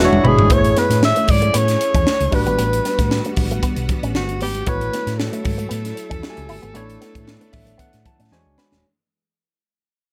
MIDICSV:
0, 0, Header, 1, 8, 480
1, 0, Start_track
1, 0, Key_signature, 3, "major"
1, 0, Tempo, 520833
1, 464, Time_signature, 4, 2, 24, 8
1, 9328, End_track
2, 0, Start_track
2, 0, Title_t, "Alto saxophone"
2, 0, Program_c, 0, 65
2, 5, Note_on_c, 0, 66, 95
2, 249, Note_on_c, 0, 68, 96
2, 263, Note_off_c, 0, 66, 0
2, 482, Note_on_c, 0, 73, 106
2, 496, Note_off_c, 0, 68, 0
2, 718, Note_on_c, 0, 71, 99
2, 732, Note_off_c, 0, 73, 0
2, 951, Note_off_c, 0, 71, 0
2, 964, Note_on_c, 0, 76, 108
2, 1200, Note_on_c, 0, 74, 103
2, 1214, Note_off_c, 0, 76, 0
2, 1440, Note_on_c, 0, 73, 114
2, 1454, Note_off_c, 0, 74, 0
2, 2162, Note_on_c, 0, 71, 102
2, 2176, Note_off_c, 0, 73, 0
2, 3112, Note_off_c, 0, 71, 0
2, 3832, Note_on_c, 0, 66, 89
2, 4051, Note_off_c, 0, 66, 0
2, 4073, Note_on_c, 0, 67, 105
2, 4307, Note_on_c, 0, 71, 120
2, 4320, Note_off_c, 0, 67, 0
2, 4740, Note_off_c, 0, 71, 0
2, 4740, Note_on_c, 0, 71, 64
2, 4773, Note_on_c, 0, 69, 96
2, 4786, Note_off_c, 0, 71, 0
2, 7659, Note_off_c, 0, 69, 0
2, 9328, End_track
3, 0, Start_track
3, 0, Title_t, "Tine electric piano"
3, 0, Program_c, 1, 4
3, 0, Note_on_c, 1, 56, 73
3, 0, Note_on_c, 1, 62, 67
3, 0, Note_on_c, 1, 64, 65
3, 0, Note_on_c, 1, 66, 70
3, 0, Note_on_c, 1, 76, 68
3, 44, Note_on_c, 1, 73, 82
3, 133, Control_c, 1, 64, 127
3, 205, Note_off_c, 1, 76, 0
3, 223, Note_on_c, 1, 83, 73
3, 447, Note_off_c, 1, 83, 0
3, 454, Note_off_c, 1, 64, 0
3, 457, Note_on_c, 1, 57, 65
3, 459, Note_off_c, 1, 56, 0
3, 461, Note_off_c, 1, 62, 0
3, 463, Note_off_c, 1, 66, 0
3, 466, Note_on_c, 1, 64, 61
3, 470, Note_on_c, 1, 68, 55
3, 475, Control_c, 1, 64, 0
3, 482, Note_on_c, 1, 72, 61
3, 494, Note_off_c, 1, 73, 0
3, 535, Note_off_c, 1, 72, 0
3, 535, Note_on_c, 1, 73, 76
3, 622, Control_c, 1, 64, 127
3, 2105, Note_off_c, 1, 57, 0
3, 2110, Note_off_c, 1, 64, 0
3, 2112, Note_off_c, 1, 68, 0
3, 2130, Note_on_c, 1, 55, 73
3, 2136, Note_on_c, 1, 62, 63
3, 2144, Note_on_c, 1, 66, 61
3, 2145, Note_off_c, 1, 73, 0
3, 2149, Note_on_c, 1, 71, 80
3, 2153, Control_c, 1, 64, 0
3, 2315, Control_c, 1, 64, 127
3, 4019, Note_off_c, 1, 55, 0
3, 4022, Note_off_c, 1, 62, 0
3, 4026, Note_off_c, 1, 66, 0
3, 4029, Note_off_c, 1, 71, 0
3, 4298, Note_on_c, 1, 57, 68
3, 4306, Note_on_c, 1, 64, 63
3, 4312, Control_c, 1, 64, 0
3, 4312, Note_on_c, 1, 66, 59
3, 4319, Note_on_c, 1, 73, 76
3, 4502, Control_c, 1, 64, 127
3, 5712, Note_off_c, 1, 57, 0
3, 5715, Note_off_c, 1, 64, 0
3, 5718, Note_off_c, 1, 66, 0
3, 5722, Note_off_c, 1, 73, 0
3, 5739, Note_on_c, 1, 57, 56
3, 5740, Note_on_c, 1, 64, 48
3, 5744, Note_on_c, 1, 66, 46
3, 5751, Note_on_c, 1, 67, 47
3, 5805, Note_on_c, 1, 80, 60
3, 5809, Note_off_c, 1, 67, 0
3, 6199, Note_off_c, 1, 57, 0
3, 6210, Note_on_c, 1, 57, 72
3, 6217, Note_off_c, 1, 64, 0
3, 6218, Note_on_c, 1, 62, 73
3, 6223, Note_off_c, 1, 66, 0
3, 6228, Note_on_c, 1, 64, 70
3, 6234, Control_c, 1, 64, 0
3, 6234, Note_on_c, 1, 73, 86
3, 6254, Note_off_c, 1, 80, 0
3, 6405, Control_c, 1, 64, 127
3, 6939, Note_on_c, 1, 76, 71
3, 7164, Note_off_c, 1, 76, 0
3, 7189, Note_on_c, 1, 78, 71
3, 7410, Note_off_c, 1, 78, 0
3, 7430, Note_on_c, 1, 81, 66
3, 7628, Note_off_c, 1, 57, 0
3, 7633, Note_off_c, 1, 62, 0
3, 7638, Note_off_c, 1, 64, 0
3, 7641, Note_off_c, 1, 73, 0
3, 7650, Note_off_c, 1, 81, 0
3, 7663, Note_on_c, 1, 56, 68
3, 7670, Note_on_c, 1, 62, 64
3, 7670, Note_on_c, 1, 80, 66
3, 7671, Note_on_c, 1, 66, 62
3, 7674, Control_c, 1, 64, 0
3, 7674, Note_on_c, 1, 72, 62
3, 7731, Note_off_c, 1, 72, 0
3, 7731, Note_on_c, 1, 73, 71
3, 7842, Control_c, 1, 64, 127
3, 7890, Note_off_c, 1, 80, 0
3, 7909, Note_on_c, 1, 83, 67
3, 8130, Note_off_c, 1, 83, 0
3, 8144, Note_off_c, 1, 56, 0
3, 8147, Note_off_c, 1, 62, 0
3, 8148, Note_off_c, 1, 66, 0
3, 8156, Control_c, 1, 64, 0
3, 8178, Note_off_c, 1, 73, 0
3, 9328, End_track
4, 0, Start_track
4, 0, Title_t, "String machine"
4, 0, Program_c, 2, 50
4, 0, Note_on_c, 2, 62, 73
4, 0, Note_on_c, 2, 85, 97
4, 428, Note_off_c, 2, 85, 0
4, 452, Note_off_c, 2, 62, 0
4, 469, Note_on_c, 2, 68, 81
4, 473, Note_on_c, 2, 57, 75
4, 474, Note_on_c, 2, 61, 90
4, 2128, Note_off_c, 2, 68, 0
4, 2130, Note_off_c, 2, 57, 0
4, 2131, Note_off_c, 2, 61, 0
4, 2139, Note_on_c, 2, 66, 95
4, 2142, Note_on_c, 2, 59, 78
4, 2144, Note_on_c, 2, 55, 83
4, 4279, Note_off_c, 2, 66, 0
4, 4280, Note_off_c, 2, 59, 0
4, 4281, Note_off_c, 2, 55, 0
4, 4299, Note_on_c, 2, 64, 93
4, 4301, Note_on_c, 2, 54, 87
4, 4303, Note_on_c, 2, 57, 77
4, 6202, Note_off_c, 2, 64, 0
4, 6203, Note_off_c, 2, 54, 0
4, 6206, Note_on_c, 2, 59, 81
4, 6211, Note_on_c, 2, 62, 92
4, 7631, Note_off_c, 2, 57, 0
4, 7641, Note_off_c, 2, 59, 0
4, 8119, Note_off_c, 2, 62, 0
4, 9328, End_track
5, 0, Start_track
5, 0, Title_t, "Clean electric guitar"
5, 0, Program_c, 3, 27
5, 232, Note_on_c, 3, 59, 83
5, 335, Note_off_c, 3, 59, 0
5, 469, Note_on_c, 3, 59, 89
5, 573, Note_off_c, 3, 59, 0
5, 707, Note_on_c, 3, 59, 78
5, 812, Note_off_c, 3, 59, 0
5, 1073, Note_on_c, 3, 57, 69
5, 1164, Note_off_c, 3, 57, 0
5, 1306, Note_on_c, 3, 57, 74
5, 1399, Note_off_c, 3, 57, 0
5, 1418, Note_on_c, 3, 59, 82
5, 1526, Note_off_c, 3, 59, 0
5, 1789, Note_on_c, 3, 61, 72
5, 1881, Note_off_c, 3, 61, 0
5, 2138, Note_on_c, 3, 62, 83
5, 2246, Note_off_c, 3, 62, 0
5, 2272, Note_on_c, 3, 59, 78
5, 2362, Note_off_c, 3, 59, 0
5, 2382, Note_on_c, 3, 59, 91
5, 2488, Note_off_c, 3, 59, 0
5, 2624, Note_on_c, 3, 59, 72
5, 2730, Note_off_c, 3, 59, 0
5, 2997, Note_on_c, 3, 57, 68
5, 3085, Note_off_c, 3, 57, 0
5, 3237, Note_on_c, 3, 57, 83
5, 3325, Note_off_c, 3, 57, 0
5, 3346, Note_on_c, 3, 59, 78
5, 3451, Note_off_c, 3, 59, 0
5, 3714, Note_on_c, 3, 61, 85
5, 3804, Note_off_c, 3, 61, 0
5, 4070, Note_on_c, 3, 59, 85
5, 4173, Note_off_c, 3, 59, 0
5, 4307, Note_on_c, 3, 59, 86
5, 4411, Note_off_c, 3, 59, 0
5, 4548, Note_on_c, 3, 59, 71
5, 4652, Note_off_c, 3, 59, 0
5, 4907, Note_on_c, 3, 57, 73
5, 4999, Note_off_c, 3, 57, 0
5, 5140, Note_on_c, 3, 57, 75
5, 5235, Note_off_c, 3, 57, 0
5, 5244, Note_on_c, 3, 59, 80
5, 5358, Note_off_c, 3, 59, 0
5, 5617, Note_on_c, 3, 61, 75
5, 5713, Note_off_c, 3, 61, 0
5, 5977, Note_on_c, 3, 64, 79
5, 6086, Note_off_c, 3, 64, 0
5, 6104, Note_on_c, 3, 59, 72
5, 6198, Note_off_c, 3, 59, 0
5, 6214, Note_on_c, 3, 59, 91
5, 6324, Note_off_c, 3, 59, 0
5, 6458, Note_on_c, 3, 59, 65
5, 6566, Note_off_c, 3, 59, 0
5, 6828, Note_on_c, 3, 57, 66
5, 6921, Note_off_c, 3, 57, 0
5, 7061, Note_on_c, 3, 57, 70
5, 7157, Note_off_c, 3, 57, 0
5, 7169, Note_on_c, 3, 59, 79
5, 7281, Note_off_c, 3, 59, 0
5, 7553, Note_on_c, 3, 61, 69
5, 7644, Note_off_c, 3, 61, 0
5, 7907, Note_on_c, 3, 59, 79
5, 8012, Note_off_c, 3, 59, 0
5, 9328, End_track
6, 0, Start_track
6, 0, Title_t, "Fingered electric bass"
6, 0, Program_c, 4, 33
6, 110, Note_on_c, 4, 28, 88
6, 200, Note_off_c, 4, 28, 0
6, 217, Note_on_c, 4, 31, 91
6, 348, Note_off_c, 4, 31, 0
6, 348, Note_on_c, 4, 32, 94
6, 438, Note_off_c, 4, 32, 0
6, 465, Note_on_c, 4, 33, 105
6, 656, Note_off_c, 4, 33, 0
6, 829, Note_on_c, 4, 45, 82
6, 1022, Note_off_c, 4, 45, 0
6, 1184, Note_on_c, 4, 44, 82
6, 1375, Note_off_c, 4, 44, 0
6, 1424, Note_on_c, 4, 45, 103
6, 1615, Note_off_c, 4, 45, 0
6, 1792, Note_on_c, 4, 40, 94
6, 1881, Note_off_c, 4, 40, 0
6, 2032, Note_on_c, 4, 37, 91
6, 2121, Note_off_c, 4, 37, 0
6, 2140, Note_on_c, 4, 33, 96
6, 2268, Note_on_c, 4, 32, 95
6, 2281, Note_off_c, 4, 33, 0
6, 2357, Note_off_c, 4, 32, 0
6, 2379, Note_on_c, 4, 33, 99
6, 2572, Note_off_c, 4, 33, 0
6, 2752, Note_on_c, 4, 45, 86
6, 2944, Note_off_c, 4, 45, 0
6, 3107, Note_on_c, 4, 33, 97
6, 3297, Note_off_c, 4, 33, 0
6, 3470, Note_on_c, 4, 35, 97
6, 3559, Note_off_c, 4, 35, 0
6, 3716, Note_on_c, 4, 33, 88
6, 3803, Note_off_c, 4, 33, 0
6, 3828, Note_on_c, 4, 31, 95
6, 4058, Note_off_c, 4, 31, 0
6, 4058, Note_on_c, 4, 32, 90
6, 4251, Note_off_c, 4, 32, 0
6, 4305, Note_on_c, 4, 33, 103
6, 4495, Note_off_c, 4, 33, 0
6, 4671, Note_on_c, 4, 45, 95
6, 4863, Note_off_c, 4, 45, 0
6, 5027, Note_on_c, 4, 44, 95
6, 5217, Note_off_c, 4, 44, 0
6, 5262, Note_on_c, 4, 45, 97
6, 5454, Note_off_c, 4, 45, 0
6, 5632, Note_on_c, 4, 40, 91
6, 5720, Note_off_c, 4, 40, 0
6, 5876, Note_on_c, 4, 37, 84
6, 5963, Note_off_c, 4, 37, 0
6, 5983, Note_on_c, 4, 31, 95
6, 6086, Note_off_c, 4, 31, 0
6, 6110, Note_on_c, 4, 32, 89
6, 6199, Note_off_c, 4, 32, 0
6, 6221, Note_on_c, 4, 33, 111
6, 6413, Note_off_c, 4, 33, 0
6, 6589, Note_on_c, 4, 45, 89
6, 6782, Note_off_c, 4, 45, 0
6, 6948, Note_on_c, 4, 33, 77
6, 7138, Note_off_c, 4, 33, 0
6, 7316, Note_on_c, 4, 45, 87
6, 7403, Note_off_c, 4, 45, 0
6, 7552, Note_on_c, 4, 45, 88
6, 7640, Note_off_c, 4, 45, 0
6, 7659, Note_on_c, 4, 40, 96
6, 7765, Note_off_c, 4, 40, 0
6, 7791, Note_on_c, 4, 37, 91
6, 7880, Note_off_c, 4, 37, 0
6, 8038, Note_on_c, 4, 27, 89
6, 8124, Note_off_c, 4, 27, 0
6, 9328, End_track
7, 0, Start_track
7, 0, Title_t, "Muted clean electric guitar strokes"
7, 834, Note_on_c, 9, 29, 43
7, 927, Note_off_c, 9, 29, 0
7, 1185, Note_on_c, 9, 29, 47
7, 1277, Note_off_c, 9, 29, 0
7, 1662, Note_on_c, 9, 29, 46
7, 1755, Note_off_c, 9, 29, 0
7, 1899, Note_on_c, 9, 29, 44
7, 1991, Note_off_c, 9, 29, 0
7, 2753, Note_on_c, 9, 29, 44
7, 2845, Note_off_c, 9, 29, 0
7, 3109, Note_on_c, 9, 29, 43
7, 3201, Note_off_c, 9, 29, 0
7, 3590, Note_on_c, 9, 29, 44
7, 3682, Note_off_c, 9, 29, 0
7, 4673, Note_on_c, 9, 29, 42
7, 4766, Note_off_c, 9, 29, 0
7, 5016, Note_on_c, 9, 29, 47
7, 5109, Note_off_c, 9, 29, 0
7, 5486, Note_on_c, 9, 29, 41
7, 5578, Note_off_c, 9, 29, 0
7, 5738, Note_on_c, 9, 29, 39
7, 5830, Note_off_c, 9, 29, 0
7, 6590, Note_on_c, 9, 29, 43
7, 6682, Note_off_c, 9, 29, 0
7, 6931, Note_on_c, 9, 29, 45
7, 7023, Note_off_c, 9, 29, 0
7, 7420, Note_on_c, 9, 29, 40
7, 7512, Note_off_c, 9, 29, 0
7, 9328, End_track
8, 0, Start_track
8, 0, Title_t, "Drums"
8, 117, Note_on_c, 9, 48, 64
8, 209, Note_off_c, 9, 48, 0
8, 228, Note_on_c, 9, 45, 90
8, 320, Note_off_c, 9, 45, 0
8, 351, Note_on_c, 9, 63, 66
8, 355, Note_on_c, 9, 43, 88
8, 444, Note_off_c, 9, 63, 0
8, 447, Note_off_c, 9, 43, 0
8, 460, Note_on_c, 9, 42, 93
8, 465, Note_on_c, 9, 36, 118
8, 466, Note_on_c, 9, 62, 51
8, 553, Note_off_c, 9, 42, 0
8, 557, Note_off_c, 9, 36, 0
8, 558, Note_off_c, 9, 62, 0
8, 594, Note_on_c, 9, 42, 47
8, 687, Note_off_c, 9, 42, 0
8, 706, Note_on_c, 9, 42, 71
8, 707, Note_on_c, 9, 38, 32
8, 711, Note_on_c, 9, 62, 55
8, 798, Note_off_c, 9, 42, 0
8, 799, Note_off_c, 9, 38, 0
8, 803, Note_off_c, 9, 62, 0
8, 835, Note_on_c, 9, 42, 57
8, 836, Note_on_c, 9, 38, 34
8, 927, Note_off_c, 9, 42, 0
8, 928, Note_off_c, 9, 38, 0
8, 946, Note_on_c, 9, 63, 71
8, 948, Note_on_c, 9, 38, 112
8, 1038, Note_off_c, 9, 63, 0
8, 1040, Note_off_c, 9, 38, 0
8, 1068, Note_on_c, 9, 42, 53
8, 1161, Note_off_c, 9, 42, 0
8, 1174, Note_on_c, 9, 64, 75
8, 1178, Note_on_c, 9, 46, 79
8, 1186, Note_on_c, 9, 36, 109
8, 1266, Note_off_c, 9, 64, 0
8, 1270, Note_off_c, 9, 46, 0
8, 1278, Note_off_c, 9, 36, 0
8, 1308, Note_on_c, 9, 42, 57
8, 1400, Note_off_c, 9, 42, 0
8, 1420, Note_on_c, 9, 42, 102
8, 1512, Note_off_c, 9, 42, 0
8, 1550, Note_on_c, 9, 42, 53
8, 1556, Note_on_c, 9, 38, 34
8, 1642, Note_off_c, 9, 42, 0
8, 1648, Note_off_c, 9, 38, 0
8, 1667, Note_on_c, 9, 42, 71
8, 1759, Note_off_c, 9, 42, 0
8, 1793, Note_on_c, 9, 36, 100
8, 1796, Note_on_c, 9, 42, 49
8, 1885, Note_off_c, 9, 36, 0
8, 1888, Note_off_c, 9, 42, 0
8, 1896, Note_on_c, 9, 63, 62
8, 1905, Note_on_c, 9, 38, 127
8, 1988, Note_off_c, 9, 63, 0
8, 1998, Note_off_c, 9, 38, 0
8, 2032, Note_on_c, 9, 42, 49
8, 2124, Note_off_c, 9, 42, 0
8, 2140, Note_on_c, 9, 46, 75
8, 2143, Note_on_c, 9, 36, 103
8, 2151, Note_on_c, 9, 63, 57
8, 2232, Note_off_c, 9, 46, 0
8, 2235, Note_off_c, 9, 36, 0
8, 2244, Note_off_c, 9, 63, 0
8, 2269, Note_on_c, 9, 63, 64
8, 2273, Note_on_c, 9, 42, 52
8, 2361, Note_off_c, 9, 63, 0
8, 2365, Note_off_c, 9, 42, 0
8, 2383, Note_on_c, 9, 42, 94
8, 2388, Note_on_c, 9, 62, 47
8, 2476, Note_off_c, 9, 42, 0
8, 2480, Note_off_c, 9, 62, 0
8, 2517, Note_on_c, 9, 42, 48
8, 2610, Note_off_c, 9, 42, 0
8, 2629, Note_on_c, 9, 42, 68
8, 2630, Note_on_c, 9, 38, 32
8, 2634, Note_on_c, 9, 62, 56
8, 2721, Note_off_c, 9, 42, 0
8, 2723, Note_off_c, 9, 38, 0
8, 2726, Note_off_c, 9, 62, 0
8, 2753, Note_on_c, 9, 36, 90
8, 2757, Note_on_c, 9, 38, 37
8, 2757, Note_on_c, 9, 42, 60
8, 2846, Note_off_c, 9, 36, 0
8, 2849, Note_off_c, 9, 42, 0
8, 2850, Note_off_c, 9, 38, 0
8, 2868, Note_on_c, 9, 38, 111
8, 2869, Note_on_c, 9, 63, 65
8, 2960, Note_off_c, 9, 38, 0
8, 2961, Note_off_c, 9, 63, 0
8, 2991, Note_on_c, 9, 42, 52
8, 3084, Note_off_c, 9, 42, 0
8, 3101, Note_on_c, 9, 46, 84
8, 3103, Note_on_c, 9, 64, 75
8, 3107, Note_on_c, 9, 36, 98
8, 3193, Note_off_c, 9, 46, 0
8, 3195, Note_off_c, 9, 64, 0
8, 3199, Note_off_c, 9, 36, 0
8, 3234, Note_on_c, 9, 42, 57
8, 3326, Note_off_c, 9, 42, 0
8, 3343, Note_on_c, 9, 36, 88
8, 3345, Note_on_c, 9, 42, 94
8, 3435, Note_off_c, 9, 36, 0
8, 3437, Note_off_c, 9, 42, 0
8, 3470, Note_on_c, 9, 42, 58
8, 3562, Note_off_c, 9, 42, 0
8, 3583, Note_on_c, 9, 64, 77
8, 3584, Note_on_c, 9, 42, 75
8, 3586, Note_on_c, 9, 36, 90
8, 3676, Note_off_c, 9, 42, 0
8, 3676, Note_off_c, 9, 64, 0
8, 3678, Note_off_c, 9, 36, 0
8, 3717, Note_on_c, 9, 42, 53
8, 3809, Note_off_c, 9, 42, 0
8, 3824, Note_on_c, 9, 38, 122
8, 3824, Note_on_c, 9, 63, 67
8, 3916, Note_off_c, 9, 38, 0
8, 3916, Note_off_c, 9, 63, 0
8, 3952, Note_on_c, 9, 42, 44
8, 4044, Note_off_c, 9, 42, 0
8, 4061, Note_on_c, 9, 46, 76
8, 4069, Note_on_c, 9, 63, 54
8, 4153, Note_off_c, 9, 46, 0
8, 4161, Note_off_c, 9, 63, 0
8, 4192, Note_on_c, 9, 42, 48
8, 4192, Note_on_c, 9, 63, 67
8, 4284, Note_off_c, 9, 42, 0
8, 4284, Note_off_c, 9, 63, 0
8, 4299, Note_on_c, 9, 42, 88
8, 4305, Note_on_c, 9, 36, 112
8, 4392, Note_off_c, 9, 42, 0
8, 4397, Note_off_c, 9, 36, 0
8, 4435, Note_on_c, 9, 42, 48
8, 4528, Note_off_c, 9, 42, 0
8, 4548, Note_on_c, 9, 42, 76
8, 4550, Note_on_c, 9, 38, 33
8, 4556, Note_on_c, 9, 62, 54
8, 4640, Note_off_c, 9, 42, 0
8, 4642, Note_off_c, 9, 38, 0
8, 4648, Note_off_c, 9, 62, 0
8, 4675, Note_on_c, 9, 38, 34
8, 4675, Note_on_c, 9, 42, 56
8, 4767, Note_off_c, 9, 42, 0
8, 4768, Note_off_c, 9, 38, 0
8, 4789, Note_on_c, 9, 38, 105
8, 4790, Note_on_c, 9, 63, 71
8, 4881, Note_off_c, 9, 38, 0
8, 4882, Note_off_c, 9, 63, 0
8, 4912, Note_on_c, 9, 42, 50
8, 5005, Note_off_c, 9, 42, 0
8, 5020, Note_on_c, 9, 46, 79
8, 5023, Note_on_c, 9, 64, 79
8, 5027, Note_on_c, 9, 36, 102
8, 5112, Note_off_c, 9, 46, 0
8, 5115, Note_off_c, 9, 64, 0
8, 5119, Note_off_c, 9, 36, 0
8, 5150, Note_on_c, 9, 42, 52
8, 5242, Note_off_c, 9, 42, 0
8, 5261, Note_on_c, 9, 42, 100
8, 5353, Note_off_c, 9, 42, 0
8, 5391, Note_on_c, 9, 42, 55
8, 5396, Note_on_c, 9, 38, 34
8, 5483, Note_off_c, 9, 42, 0
8, 5488, Note_off_c, 9, 38, 0
8, 5504, Note_on_c, 9, 42, 70
8, 5597, Note_off_c, 9, 42, 0
8, 5632, Note_on_c, 9, 36, 102
8, 5635, Note_on_c, 9, 42, 51
8, 5725, Note_off_c, 9, 36, 0
8, 5727, Note_off_c, 9, 42, 0
8, 5740, Note_on_c, 9, 63, 69
8, 5745, Note_on_c, 9, 38, 119
8, 5832, Note_off_c, 9, 63, 0
8, 5837, Note_off_c, 9, 38, 0
8, 5871, Note_on_c, 9, 42, 47
8, 5963, Note_off_c, 9, 42, 0
8, 5981, Note_on_c, 9, 46, 74
8, 5988, Note_on_c, 9, 63, 53
8, 6073, Note_off_c, 9, 46, 0
8, 6080, Note_off_c, 9, 63, 0
8, 6109, Note_on_c, 9, 42, 45
8, 6109, Note_on_c, 9, 63, 61
8, 6201, Note_off_c, 9, 42, 0
8, 6201, Note_off_c, 9, 63, 0
8, 6220, Note_on_c, 9, 42, 88
8, 6220, Note_on_c, 9, 62, 43
8, 6312, Note_off_c, 9, 62, 0
8, 6313, Note_off_c, 9, 42, 0
8, 6356, Note_on_c, 9, 42, 43
8, 6448, Note_off_c, 9, 42, 0
8, 6466, Note_on_c, 9, 62, 50
8, 6467, Note_on_c, 9, 42, 72
8, 6469, Note_on_c, 9, 38, 31
8, 6558, Note_off_c, 9, 62, 0
8, 6559, Note_off_c, 9, 42, 0
8, 6561, Note_off_c, 9, 38, 0
8, 6592, Note_on_c, 9, 36, 90
8, 6595, Note_on_c, 9, 42, 55
8, 6684, Note_off_c, 9, 36, 0
8, 6687, Note_off_c, 9, 42, 0
8, 6702, Note_on_c, 9, 63, 67
8, 6706, Note_on_c, 9, 38, 103
8, 6794, Note_off_c, 9, 63, 0
8, 6798, Note_off_c, 9, 38, 0
8, 6831, Note_on_c, 9, 42, 50
8, 6923, Note_off_c, 9, 42, 0
8, 6938, Note_on_c, 9, 64, 71
8, 6939, Note_on_c, 9, 46, 77
8, 6945, Note_on_c, 9, 36, 98
8, 7031, Note_off_c, 9, 46, 0
8, 7031, Note_off_c, 9, 64, 0
8, 7038, Note_off_c, 9, 36, 0
8, 7067, Note_on_c, 9, 42, 57
8, 7160, Note_off_c, 9, 42, 0
8, 7181, Note_on_c, 9, 36, 79
8, 7181, Note_on_c, 9, 42, 106
8, 7185, Note_on_c, 9, 62, 30
8, 7274, Note_off_c, 9, 36, 0
8, 7274, Note_off_c, 9, 42, 0
8, 7277, Note_off_c, 9, 62, 0
8, 7309, Note_on_c, 9, 42, 58
8, 7314, Note_on_c, 9, 38, 32
8, 7401, Note_off_c, 9, 42, 0
8, 7406, Note_off_c, 9, 38, 0
8, 7424, Note_on_c, 9, 42, 74
8, 7425, Note_on_c, 9, 36, 87
8, 7425, Note_on_c, 9, 64, 76
8, 7516, Note_off_c, 9, 42, 0
8, 7517, Note_off_c, 9, 36, 0
8, 7518, Note_off_c, 9, 64, 0
8, 7555, Note_on_c, 9, 42, 54
8, 7647, Note_off_c, 9, 42, 0
8, 7657, Note_on_c, 9, 63, 65
8, 7667, Note_on_c, 9, 38, 61
8, 7749, Note_off_c, 9, 63, 0
8, 7759, Note_off_c, 9, 38, 0
8, 7905, Note_on_c, 9, 63, 52
8, 7907, Note_on_c, 9, 38, 94
8, 7997, Note_off_c, 9, 63, 0
8, 7999, Note_off_c, 9, 38, 0
8, 8029, Note_on_c, 9, 63, 63
8, 8037, Note_on_c, 9, 38, 80
8, 8121, Note_off_c, 9, 63, 0
8, 8129, Note_off_c, 9, 38, 0
8, 9328, End_track
0, 0, End_of_file